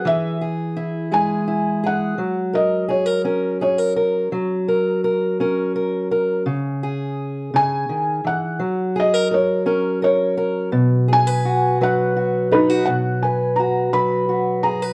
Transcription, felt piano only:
X:1
M:6/8
L:1/8
Q:3/8=56
K:B
V:1 name="Felt piano"
e z2 g2 f- | f d c2 c2 | z6 | z3 g2 f- |
f d c2 c2 | z g2 f2 [DB] | f g a b2 a |]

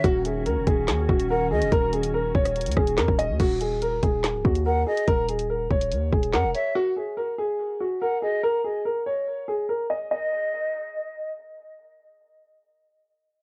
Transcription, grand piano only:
X:1
M:4/4
L:1/8
Q:1/4=143
K:Ebm
V:1 name="Grand piano"
G A B A2 G B A | B A B d2 A B e | G A B A2 G B A | B A B d2 A B d |
G A B A2 G B A | B A B d2 A B e | e6 z2 | z8 |]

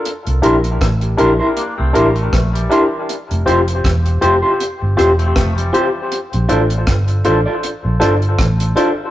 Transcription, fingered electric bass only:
X:1
M:4/4
L:1/16
Q:"Swing 16ths" 1/4=79
K:F
V:1 name="Fingered electric bass" clef=bass
z C,, B,,,2 A,,,2 B,,, z2 C,, A,,,2 B,,,2 z2 | z F,,, F,,,2 E,,,2 F,,, z2 G,,, E,,,2 F,,,2 z2 | z B,,, A,,,2 G,,,2 A,,, z2 B,,, G,,,2 A,,,2 z2 |]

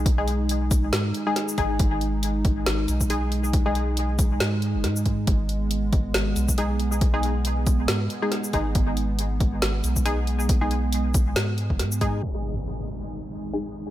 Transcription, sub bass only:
X:1
M:4/4
L:1/16
Q:"Swing 16ths" 1/4=138
K:G#m
V:1 name="Sub bass" clef=bass
B,,,8 G,,2 z4 G,,,2 | G,,,8 G,,,2 B,,,6- | B,,,8 G,,3 F,,, G,,4 | G,,,8 G,,,2 B,,,6- |
B,,,8 G,,2 z4 G,,,2 | G,,,8 G,,,2 B,,,6- | B,,,8 G,,3 F,,, G,,4 | z16 |]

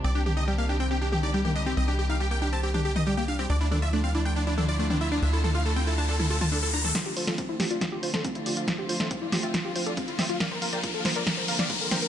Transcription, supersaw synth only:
X:1
M:4/4
L:1/16
Q:1/4=139
K:F
V:1 name="Supersaw synth"
d G G _e G f G g G G G d G G e G | _e G G f G g G a G G G e G G f G | d D D e D f D g D D D d D D e D | e A A f A g A a A A A a A A b A |
[Ac] F F [Fd] F [ce] F [df] F F F [Ac] F F [Fd] F | [Fd] F F [ce] F [df] F [eg] F F F [Fd] F F [ce] F | [df] B B [Bg] B [fa] B [db] B B B [df] B B [Bg] B |]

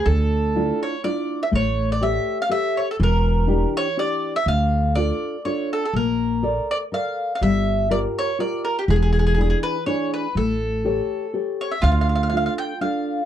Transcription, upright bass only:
X:1
M:3/4
L:1/8
Q:"Swing" 1/4=122
K:Dm
V:1 name="Upright bass" clef=bass
D,,4 z2 | A,,,4 z2 | E,,,4 z2 | D,,4 z2 |
B,,,4 z2 | G,,,4 z2 | E,,,4 z2 | A,,,4 z2 |
D,,4 z2 |]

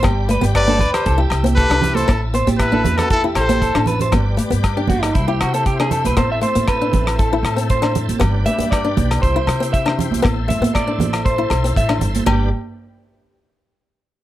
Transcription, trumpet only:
X:1
M:4/4
L:1/16
Q:"Swing 16ths" 1/4=118
K:G
V:1 name="Trumpet"
z4 d3 c2 z3 B3 A- | A z3 B3 A A2 c4 z2 | z16 | z16 |
z16 | z16 | z16 |]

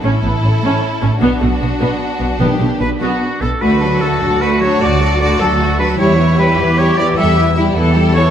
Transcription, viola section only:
X:1
M:6/8
L:1/8
Q:3/8=101
K:Glyd
V:1 name="Viola section" clef=bass
C B, C C z C | B, A, B, B, z B, | B, A, B, B, z B, | [K:D] [D,A,] F, [D,A,] F, [D,A,] F, |
[D,A,] F, [D,A,] F, [D,A,] F, | G, E, G, E, G, E, | G, E, G, E, G, E, |]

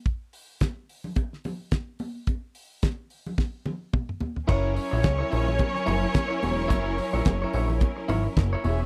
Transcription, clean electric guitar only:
X:1
M:4/4
L:1/16
Q:"Swing 16ths" 1/4=108
K:F#mix
V:1 name="Clean electric guitar"
z16 | z16 | [EAc]2 z [EAc] z [EAc] [EAc] z3 [EAc] z2 [EAc] z2 | [EAc]2 z [EAc] z [EAc] [EAc] z3 [EAc] z2 [EAc] [EGc] z |]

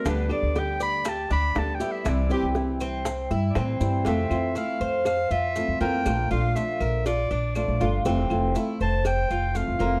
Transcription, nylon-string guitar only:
X:1
M:4/4
L:1/8
Q:1/4=120
K:F
V:1 name="Nylon-string guitar"
[D,G,=B,G] [G,B,G] [D,G,B,G]2 z2 [D,G,B,G] [G,B,G] | [C,E,G,CE] [E,G,CE] [E,G,CE]2 z2 [E,G,CE] [E,G,CE] | [C,E,A,CF] [E,A,CF] [A,CF]2 z2 [E,A,CF] [E,A,CF] | [F,A,DF] [A,DF] [F,A,DF]2 z2 [F,A,DF] [A,DF] |
[C,E,A,CF] [E,A,CF] [A,CF]2 z2 [E,A,CF] [E,A,CF] |]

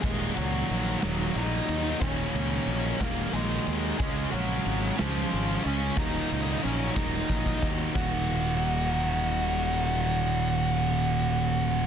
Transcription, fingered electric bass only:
X:1
M:6/8
L:1/8
Q:3/8=61
K:Ebm
V:1 name="Fingered electric bass" clef=bass
E,,, D,, B,,, E,,, B,,, E,, | E,,, D,, B,,, E,,, B,,, E,, | D,, B,,, A,,, D,, A,,, D,, | E,,, D,, B,,, E,,, B,,, E,, |
E,,,6- | E,,,6 |]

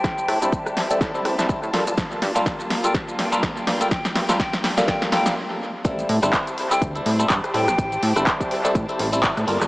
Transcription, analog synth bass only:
X:1
M:4/4
L:1/16
Q:"Swing 16ths" 1/4=124
K:Aphr
V:1 name="Analog synth bass" clef=bass
A,,,2 A,, G,,, z4 A,, z A,,,3 A,, G,,, G,,, | G,,,2 G,, F,,, z4 C,,2 G,,2 F,, z G,, G,,, | G,,,2 G,, F,,, z4 G,, z G,,,2 z4 | A,,,2 A,, G,,, z4 D,,2 A,,2 G,, z A,, A,,, |
A,,,2 A,, G,,, z4 A,, z A,,,3 A,, G,,, G,,, |]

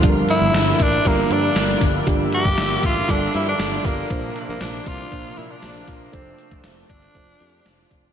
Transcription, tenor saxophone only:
X:1
M:4/4
L:1/16
Q:1/4=118
K:Gdor
V:1 name="Tenor saxophone"
z2 E4 D2 B,2 D4 z2 | z2 G4 F2 D2 E D3 B,2- | B,3 B, D2 F4 E D3 B,2 | C4 z2 D8 z2 |]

